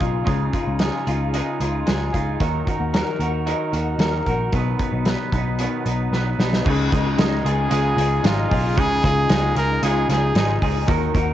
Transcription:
Already playing: clean electric guitar C#3 D#4 G#4
0.00 picked electric bass B1, clean electric guitar D#4 F4 G#4, kick, closed hi-hat
0.24 picked electric bass C#2, clean electric guitar C#3 G#3 D#4 F4 G#4, kick, closed hi-hat
0.53 clean electric guitar D#4 F4 G#4, kick, closed hi-hat
0.67 picked electric bass C#2
0.79 clean electric guitar G#3 D#4 F4 G#4, snare, closed hi-hat
1.07 picked electric bass C#2, clean electric guitar D#4 F4 G#4, closed hi-hat
1.33 clean electric guitar C#3 G#3 D#4 F4 G#4, closed hi-hat
1.60 picked electric bass C#2, clean electric guitar D#4 F4 G#4, closed hi-hat
1.86 picked electric bass C#2, clean electric guitar G#3 D#4 F4 G#4, snare, closed hi-hat
2.13 picked electric bass C#2, clean electric guitar D#4 F4 G#4, kick, closed hi-hat
2.40 picked electric bass D#2, clean electric guitar D#3 F#3 D#4 F#4 A#4, kick, closed hi-hat
2.67 clean electric guitar D#4 F#4 A#4, kick, closed hi-hat
2.80 picked electric bass D#2
2.94 clean electric guitar F#3 D#4 F#4 A#4, snare, closed hi-hat
3.19 picked electric bass D#2, clean electric guitar D#4 F#4 A#4, closed hi-hat
3.46 clean electric guitar D#3 F#3 D#4 F#4 A#4, closed hi-hat
3.72 picked electric bass D#2, clean electric guitar D#4 F#4 A#4, closed hi-hat
3.99 picked electric bass D#2, clean electric guitar F#3 D#4 F#4 A#4, snare, closed hi-hat
4.26 picked electric bass A#1, clean electric guitar D#4 F#4 A#4, kick, closed hi-hat
4.52 picked electric bass B1, clean electric guitar B2 D#3 F#3 B3 D#4 B4, kick, closed hi-hat
4.79 clean electric guitar B3 D#4 B4, kick, closed hi-hat
4.84 clean electric guitar F#3
4.92 picked electric bass B1
5.05 clean electric guitar F#3 B3 D#4, snare, closed hi-hat
5.09 clean electric guitar B4
5.32 picked electric bass B1, clean electric guitar F#3 B3 D#4 B4, kick, closed hi-hat
5.59 clean electric guitar B2 D#3 F#3 B3 D#4 B4, closed hi-hat
5.86 picked electric bass B1, clean electric guitar F#3 B3 D#4 B4, closed hi-hat
6.11 picked electric bass B1, clean electric guitar F#3 B3 D#4, snare
6.15 clean electric guitar B4
6.39 picked electric bass B1, clean electric guitar F#3 B3 D#4 B4, snare
6.53 snare
6.65 picked electric bass C#2, clean electric guitar C#3 G#3 D#4 F4 G#4, kick, crash
6.92 picked electric bass C#2, clean electric guitar D#4 F4 G#4, kick, closed hi-hat
7.06 clean electric guitar F4
7.18 picked electric bass C#2, clean electric guitar G#3 D#4 F4 G#4, snare, closed hi-hat
7.44 picked electric bass C#2, clean electric guitar D#4 F4 G#4, trumpet G#4, closed hi-hat
7.70 picked electric bass C#2, clean electric guitar C#3 G#3 D#4 F4 G#4, closed hi-hat
7.97 picked electric bass C#2, clean electric guitar D#4 F4 G#4, closed hi-hat
8.23 picked electric bass G#1, clean electric guitar G#3 D#4 F4 G#4, trumpet F4, snare, closed hi-hat
8.49 picked electric bass B1, clean electric guitar D#4 F4 G#4, kick, open hi-hat
8.76 picked electric bass C#2, clean electric guitar C#3 G#3 D#4 F4 G#4, trumpet G#4, kick, closed hi-hat
9.03 picked electric bass C#2, clean electric guitar D#4 F4 G#4, trumpet G#4, kick, closed hi-hat
9.29 picked electric bass C#2, clean electric guitar G#3 D#4 F4 G#4, snare, closed hi-hat
9.56 picked electric bass C#2, clean electric guitar D#4 F4 G#4, trumpet A#4, closed hi-hat
9.83 picked electric bass C#2, clean electric guitar C#3 G#3 D#4 F4 G#4, trumpet G#4, closed hi-hat
10.09 picked electric bass C#2, clean electric guitar D#4 F4 G#4, trumpet G#4, snare, closed hi-hat
10.35 picked electric bass G#1, clean electric guitar G#3 D#4 F4 G#4, snare, closed hi-hat
10.62 picked electric bass C#2, clean electric guitar D#4 F4 G#4, kick, open hi-hat
10.87 picked electric bass D#2, clean electric guitar D#3 F#3 D#4 F#4 A#4, kick, closed hi-hat
11.14 picked electric bass D#2, clean electric guitar D#4 F#4 A#4, kick, closed hi-hat

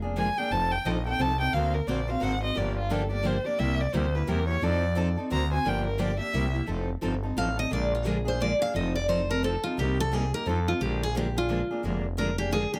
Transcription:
Already playing: fm bass F1
0.02 steel-string acoustic guitar A#3 D4 G#4
0.16 steel-string acoustic guitar D3 F3 G#3 A#3 D4 F4 G#4 A#4, violin G#5
0.38 steel-string acoustic guitar A#3 D4 G#4, violin G5
0.51 fm bass F1, steel-string acoustic guitar F3 C4 D#4 A4, violin A5
0.72 violin G5
0.85 fm bass A#1, steel-string acoustic guitar F3 C4 D#4 A4, violin D#5
1.07 steel-string acoustic guitar C4 D#4 A4, violin G5
1.18 fm bass C2, steel-string acoustic guitar F3 C4 D#4 A4, violin A5
1.40 steel-string acoustic guitar C4 D#4 A4, violin G5
1.53 fm bass D2, steel-string acoustic guitar D3 A#3 C4 F#4 C5, violin F5
1.74 violin A#4
1.87 fm bass A#1, steel-string acoustic guitar D3 A#3 C4 F#4 C5, violin D5
2.08 steel-string acoustic guitar C4 F#4 C5, violin F5
2.20 fm bass G#1, steel-string acoustic guitar D3 A#3 C4 F#4 C5, violin F#5
2.42 steel-string acoustic guitar C4 F#4 C5, violin D#5
2.54 fm bass G1, steel-string acoustic guitar D3 F3 A#3 D4 G4, violin D5
2.78 violin F4
2.90 steel-string acoustic guitar D3 F3 A#3 D4 G4, violin A4
3.10 steel-string acoustic guitar A#3 D4 G4, violin D5
3.22 steel-string acoustic guitar D3 F3 A#3 D4 G4
3.27 violin C5
3.45 steel-string acoustic guitar A#3 D4 G4, violin D5
3.58 fm bass C2, steel-string acoustic guitar C3 G3 A#3 E4 G4, violin E5
3.81 violin D5
3.93 fm bass D2, steel-string acoustic guitar C3 G3 A#3 E4 G4, violin C5
4.15 steel-string acoustic guitar A#3 E4 G4, violin B4
4.27 fm bass E2, steel-string acoustic guitar C3 G3 A#3 E4 G4, violin A#4
4.48 steel-string acoustic guitar A#3 E4 G4, violin C#5
4.62 fm bass F2, steel-string acoustic guitar F3 C4 D#4 A4, violin D5
4.96 steel-string acoustic guitar F3 C4 D#4 A4
5.17 steel-string acoustic guitar C4 D#4 A4
5.31 fm bass D2, steel-string acoustic guitar D3 A#3 C4 F#4 C5, violin A#5
5.51 steel-string acoustic guitar C4 F#4 C5, violin G#5
5.65 fm bass G1, steel-string acoustic guitar D3 F3 A#3 D4 G4, violin G5
5.87 violin A#4
5.98 steel-string acoustic guitar D3 F3 A#3 D4 G4, violin D5
6.18 steel-string acoustic guitar A#3 D4 G4, violin E5
6.33 fm bass C2, steel-string acoustic guitar C3 G3 A#3 E4 G4
6.53 steel-string acoustic guitar A#3 E4 G4
6.66 fm bass F1, steel-string acoustic guitar F3 C4 D#4 A4
7.01 fm bass G1, steel-string acoustic guitar F3 C4 D#4 A4
7.23 steel-string acoustic guitar C4 D#4 A4
7.36 fm bass A1, steel-string acoustic guitar F3 C4 D#4 A4 F5
7.57 steel-string acoustic guitar C4 D#4 A4 D#5
7.70 fm bass A#1, steel-string acoustic guitar D3 F3 G#3 A#3 D4 F4 G#4 A#4 D5
7.95 steel-string acoustic guitar F4
8.05 steel-string acoustic guitar D3 F3 G#3 A#3 D4 F4 G#4 A#4
8.25 steel-string acoustic guitar A#3 D4 G#4 C5
8.40 steel-string acoustic guitar D3 F3 G#3 A#3 D4 F4 G#4 A#4 D5
8.59 steel-string acoustic guitar A#3 D4 G#4 F5
8.74 fm bass F1, steel-string acoustic guitar F3 C4 D#4 A4 D#5
8.95 steel-string acoustic guitar D5
9.08 steel-string acoustic guitar F3 C4 D#4 A4 C5
9.30 steel-string acoustic guitar C4 D#4 A4 A#4
9.43 steel-string acoustic guitar F3 C4 D#4 A4
9.64 steel-string acoustic guitar C4 D#4 F4 A4
9.78 fm bass C2, steel-string acoustic guitar C3 G3 A#3 D#4 G4
10.00 steel-string acoustic guitar A4
10.13 steel-string acoustic guitar C3 G3 A#3 D#4 G4 G#4
10.34 steel-string acoustic guitar A#3 D#4 G4 A#4
10.46 fm bass F2, steel-string acoustic guitar F3 C4 D#4 A4
10.67 steel-string acoustic guitar C4 D#4 F4 A4
10.80 fm bass A#1, steel-string acoustic guitar D3 F3 G#3 A#3 D4 F4 G4 G#4 A#4
11.03 steel-string acoustic guitar G#4
11.15 steel-string acoustic guitar D3 F3 G#3 A#3 D4 F4 G4 G#4 A#4
11.36 steel-string acoustic guitar A#3 D4 F4 G#4
11.49 steel-string acoustic guitar D3 F3 G#3 A#3 D4 F4 G#4 A#4
11.71 steel-string acoustic guitar A#3 D4 G#4
11.84 fm bass F1, steel-string acoustic guitar D3 F3 G#3 A#3 D4 F4 G#4 A#4
12.17 steel-string acoustic guitar D3 F3 G#3 A#3 D4 F4 G#4 A#4
12.38 steel-string acoustic guitar A#3 D4 G4 G#4
12.52 steel-string acoustic guitar D3 F3 G#3 A#3 D4 F4 G#4 A#4
12.73 steel-string acoustic guitar A#3 D4 G4 G#4

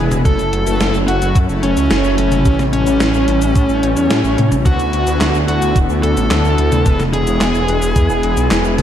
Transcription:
Already playing: analog polysynth G#3 B3 E4 G#4 B4, supersaw synth G#3 B3 E4, lead electric guitar G#4, digital synth lead G#5
0.12 detuned saw bass E1, closed hi-hat, mid tom, shaker
0.25 detuned saw bass F#1, supersaw synth F#3 A3, analog polysynth A3 C#4 E4 F#4 A4, lead electric guitar A4, digital synth lead A5, kick, closed hi-hat, shaker
0.39 detuned saw bass F#1, closed hi-hat, shaker
0.53 detuned saw bass F#1, closed hi-hat
0.66 detuned saw bass F#1, analog polysynth A3 C#4 E4 F#4 B4, closed hi-hat, shaker
0.80 detuned saw bass F#1, snare, closed hi-hat, shaker
0.94 detuned saw bass F#1, shaker
1.08 detuned saw bass F#1, analog polysynth A3 C#4 E4 F#4 A4, lead electric guitar F#4, digital synth lead F#5, closed hi-hat
1.22 detuned saw bass F#1, closed hi-hat, shaker
1.35 detuned saw bass F#2, kick, closed hi-hat, shaker
1.49 detuned saw bass F#1, analog polysynth A3 C#4 E4 F#4 A4, shaker
1.63 detuned saw bass F#1, lead electric guitar C#4, digital synth lead C#5, closed hi-hat
1.77 detuned saw bass C#2, closed hi-hat, shaker
1.90 detuned saw bass F#1, analog polysynth A3 C#4 E4 F#4 A4, snare, closed hi-hat, shaker
2.04 detuned saw bass F#1, shaker
2.18 detuned saw bass F#1, analog polysynth A2 A3 C#4 E4 F#4 A4, closed hi-hat
2.32 detuned saw bass F#1, closed hi-hat, mid tom, shaker
2.45 detuned saw bass A1, analog polysynth A2 A3 C#4 E4 G4 A4, supersaw synth G3 C#4, kick, closed hi-hat, shaker
2.59 detuned saw bass A1, snare, closed hi-hat, mid tom, shaker
2.73 detuned saw bass A1, lead electric guitar C#4, digital synth lead C#5, closed hi-hat
2.87 detuned saw bass A1, analog polysynth A2 A3 C#4 E4 G4 B4, closed hi-hat, shaker
3.00 detuned saw bass A1, snare, closed hi-hat, shaker
3.14 detuned saw bass A1, shaker
3.28 detuned saw bass A1, analog polysynth A2 A3 C#4 E4 G4 A4, closed hi-hat
3.42 detuned saw bass A1, closed hi-hat, shaker
3.56 detuned saw bass A2, kick, closed hi-hat, shaker
3.69 detuned saw bass A1, analog polysynth A2 A3 C#4 E4 G4 A4, shaker
3.83 detuned saw bass A1, closed hi-hat
3.97 detuned saw bass E2, closed hi-hat, shaker
4.10 detuned saw bass A2, analog polysynth A2 A3 C#4 E4 G4 A4, snare, closed hi-hat, shaker
4.24 detuned saw bass A1, analog polysynth A2 A3 C#4 E4 G4 C#5, shaker
4.38 detuned saw bass A2, closed hi-hat, mid tom
4.52 detuned saw bass A1, closed hi-hat, mid tom, shaker
4.65 detuned saw bass D2, analog polysynth D3 A3 B3 D4 F#4 A4, supersaw synth D3 A3 B3 E4 F#4, lead electric guitar F#4, digital synth lead F#5, kick, closed hi-hat, shaker
4.79 detuned saw bass D2, closed hi-hat, shaker
4.93 detuned saw bass D2, closed hi-hat
5.07 detuned saw bass D2, analog polysynth D3 A3 B3 D4 F#4 B4, closed hi-hat, shaker
5.21 detuned saw bass D2, snare, clap, closed hi-hat, shaker
5.34 detuned saw bass D2, shaker
5.48 detuned saw bass D2, analog polysynth D3 A3 B3 D4 F#4 A4, lead electric guitar F#4, digital synth lead F#5, closed hi-hat
5.62 detuned saw bass D2, closed hi-hat, shaker
5.76 detuned saw bass D1, kick, closed hi-hat, shaker
5.89 detuned saw bass D2, analog polysynth D3 A3 B3 D4 F#4 A4, shaker
6.03 detuned saw bass D2, lead electric guitar A4, digital synth lead A5, closed hi-hat
6.17 detuned saw bass A1, closed hi-hat, shaker
6.31 detuned saw bass D2, analog polysynth D3 A3 B3 D4 F#4 A4, snare, clap, closed hi-hat, shaker
6.44 detuned saw bass D2, shaker
6.58 detuned saw bass D2, analog polysynth A3 B3 D4 F#4 A4, closed hi-hat
6.72 detuned saw bass D2, closed hi-hat, mid tom, shaker
6.86 detuned saw bass E1, supersaw synth G#3, analog polysynth G#3 B3 E4 G#4 B4, kick, closed hi-hat, shaker
7.00 detuned saw bass E1, snare, closed hi-hat, mid tom, shaker
7.13 detuned saw bass E1, lead electric guitar G#4, digital synth lead G#5, closed hi-hat
7.27 detuned saw bass E1, analog polysynth G#3 B3 E4 G#4 C#5, closed hi-hat, shaker
7.41 detuned saw bass E1, snare, clap, closed hi-hat, shaker
7.55 detuned saw bass E1, shaker
7.68 detuned saw bass E1, analog polysynth G#3 B3 E4 G#4 B4, closed hi-hat
7.82 detuned saw bass E1, closed hi-hat, shaker
7.96 detuned saw bass E2, kick, closed hi-hat, shaker
8.10 detuned saw bass E1, analog polysynth G#3 B3 E4 G#4 B4, shaker
8.23 detuned saw bass E1, closed hi-hat
8.37 detuned saw bass B1, closed hi-hat, shaker
8.51 detuned saw bass E1, analog polysynth G#3 B3 E4 G#4 B4, snare, clap, closed hi-hat, shaker
8.65 detuned saw bass E1, shaker
8.78 detuned saw bass E1, analog polysynth G#3 B3 E4 G#4 B4, closed hi-hat, mid tom

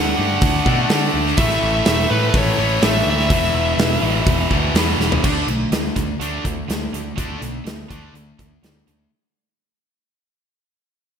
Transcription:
Already playing: picked electric bass D2, distorted electric guitar D3 A3 D4, lead electric guitar F#5
0.17 picked electric bass G2, distorted electric guitar D3 A3 D4
0.41 picked electric bass D2, kick, open hi-hat
0.66 picked electric bass B2, distorted electric guitar D3 A3 D4, kick
0.89 picked electric bass D3, distorted electric guitar D3 A3 D4, snare, open hi-hat
1.14 picked electric bass D2
1.27 snare
1.37 picked electric bass A1, distorted electric guitar A2 E3 A3, lead electric guitar E5, kick, open hi-hat
1.50 snare
1.62 picked electric bass A1
1.85 picked electric bass E1, lead electric guitar E5, snare, open hi-hat
2.08 picked electric bass A2, distorted electric guitar A2 E3 A3, lead electric guitar B4
2.30 lead electric guitar B4, open hi-hat
2.34 picked electric bass A1, lead electric guitar C#5, kick
2.58 picked electric bass A1, distorted electric guitar A2 E3 A3
2.81 picked electric bass A1, distorted electric guitar A2 E3 A3, lead electric guitar E5, snare, open hi-hat
3.06 picked electric bass D2
3.10 lead electric guitar E5
3.19 snare
3.30 picked electric bass E1, distorted electric guitar E2 B2 E3, kick, open hi-hat
3.55 picked electric bass E1
3.78 picked electric bass E1, snare, open hi-hat
4.01 picked electric bass A1, distorted electric guitar E2 B2 E3
4.26 picked electric bass E1, kick, open hi-hat
4.51 picked electric bass D2, distorted electric guitar E2 B2 E3, kick
4.74 picked electric bass E2, distorted electric guitar E2 B2 E3, snare, open hi-hat
4.98 picked electric bass E1, snare
5.12 floor tom
5.24 picked electric bass D2, distorted electric guitar D3 A3 D4, kick, crash
5.47 picked electric bass B1, distorted electric guitar D3 A3, closed hi-hat
5.71 picked electric bass D2, distorted electric guitar D3 A3, snare, closed hi-hat
5.96 picked electric bass D2, distorted electric guitar D3 A3, kick, snare, closed hi-hat
6.20 picked electric bass D2, distorted electric guitar D3 A3 D4, closed hi-hat
6.44 picked electric bass D2, distorted electric guitar D3 A3, kick, closed hi-hat
6.69 picked electric bass D2, distorted electric guitar D3 A3, snare, closed hi-hat
6.93 picked electric bass D2, distorted electric guitar D3 A3, closed hi-hat
7.17 picked electric bass D2, distorted electric guitar D3 A3 D4, kick, closed hi-hat
7.41 picked electric bass B1, distorted electric guitar D3 A3, closed hi-hat
7.65 picked electric bass D2, distorted electric guitar D3 A3, snare, closed hi-hat
7.90 picked electric bass D2, distorted electric guitar D3 A3 D4, kick, closed hi-hat
8.13 picked electric bass D2, distorted electric guitar D3 A3, closed hi-hat
8.39 picked electric bass D2, distorted electric guitar D3 A3, kick, closed hi-hat
8.63 picked electric bass D2, distorted electric guitar D3 A3, snare, closed hi-hat
8.87 picked electric bass D2, distorted electric guitar D3 A3, closed hi-hat

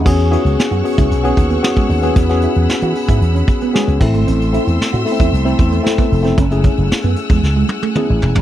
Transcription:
0.05 slap bass E2, tine electric piano B3 C#4 F#4 G#4, clean electric guitar C#4, string section G#4 F#5 C#6 E6, kick, crash
0.20 closed hi-hat
0.31 tine electric piano B3 C#4 F#4 G#4, clean electric guitar E4, closed hi-hat
0.45 slap bass C#2, muted clean electric guitar stroke, closed hi-hat
0.60 snare
0.71 slap bass F#2, clean electric guitar F#4, closed hi-hat
0.84 tine electric piano B3 C#4 F#4 G#4, muted clean electric guitar stroke, open hi-hat
0.98 slap bass C#2, clean electric guitar E4, kick, closed hi-hat
1.11 slap bass B1, closed hi-hat
1.23 tine electric piano B3 C#4 F#4 G#4, clean electric guitar C#4, closed hi-hat
1.37 slap bass D#2, kick, closed hi-hat
1.50 clean electric guitar B3, closed hi-hat
1.63 tine electric piano B3 C#4 F#4 G#4, snare
1.76 clean electric guitar G#3, kick, closed hi-hat
1.89 slap bass D#2, muted clean electric guitar stroke, open hi-hat
2.02 tine electric piano B3 C#4 F#4 G#4, clean electric guitar B3, closed hi-hat
2.16 slap bass E2, clean electric guitar C#4, string section B5, kick, closed hi-hat
2.29 tine electric piano B3 C#4 F#4 G#4, snare, closed hi-hat
2.42 clean electric guitar E4, closed hi-hat
2.55 slap bass E2, muted clean electric guitar stroke, closed hi-hat
2.69 muted slap bass stroke, snare
2.81 slap bass E3, clean electric guitar F#4, closed hi-hat
2.95 muted clean electric guitar stroke, open hi-hat
3.08 slap bass G#2, clean electric guitar E4, kick, closed hi-hat
3.21 slap bass E2, closed hi-hat
3.35 clean electric guitar C#4, closed hi-hat
3.48 muted clean electric guitar stroke, kick, closed hi-hat
3.61 clean electric guitar B3, closed hi-hat
3.73 clean electric guitar G#3, tine electric piano B3 C#4 F#4 G#4, snare
3.88 slap bass C#2, closed hi-hat
4.00 slap bass A1, tine electric piano A3 C4 E4 A4, string section A3 E5 C6 E6, muted clean electric guitar stroke, kick, crash
4.14 slap bass G#1, clean electric guitar A3, closed hi-hat
4.27 slap bass A1, clean electric guitar C4, closed hi-hat
4.41 closed hi-hat
4.52 tine electric piano A3 C4 E4 A4, clean electric guitar E4, closed hi-hat
4.67 slap bass E2, muted clean electric guitar stroke, closed hi-hat
4.80 muted slap bass stroke, snare
4.93 slap bass A2, clean electric guitar F#4, closed hi-hat
5.05 tine electric piano A3 B3 E4 A4, muted clean electric guitar stroke, open hi-hat
5.12 tine electric piano C4
5.20 slap bass E2, clean electric guitar E4, kick, closed hi-hat
5.32 slap bass C2, closed hi-hat
5.45 tine electric piano A3 C4 E4 A4, clean electric guitar C4, closed hi-hat
5.59 slap bass E2, muted clean electric guitar stroke, kick, closed hi-hat
5.71 clean electric guitar C4, closed hi-hat
5.83 tine electric piano A3 C4 E4 A4, snare
5.98 clean electric guitar B3, kick, closed hi-hat
6.12 slap bass F1, muted clean electric guitar stroke, open hi-hat
6.23 tine electric piano A3 C4 E4 A4, clean electric guitar C4, snare, closed hi-hat
6.37 slap bass F#1, clean electric guitar C#4, string section F#5 G#5 E6, kick, closed hi-hat
6.51 tine electric piano A3 C#4 E4 G#4, closed hi-hat
6.63 clean electric guitar C#4, kick, closed hi-hat
6.77 slap bass F#1, muted clean electric guitar stroke, closed hi-hat
6.92 muted slap bass stroke, snare
7.03 slap bass F#2, clean electric guitar B3, closed hi-hat
7.16 muted clean electric guitar stroke, closed hi-hat
7.29 slap bass E2, clean electric guitar G#3, kick, closed hi-hat
7.43 slap bass C#2, snare
7.56 clean electric guitar G#3
7.69 muted clean electric guitar stroke, high tom
7.82 clean electric guitar A3, high tom
7.95 tine electric piano A3 C#4 E4 G#4, clean electric guitar B3, mid tom
8.10 slap bass A1
8.22 slap bass E1, muted clean electric guitar stroke, floor tom
8.35 slap bass D#1, clean electric guitar C#4, floor tom

